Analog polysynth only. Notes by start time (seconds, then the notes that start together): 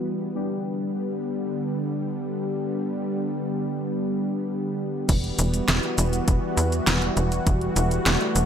Already playing: G3 B3 E4 F#4
0.34 G3 B3 D4 G4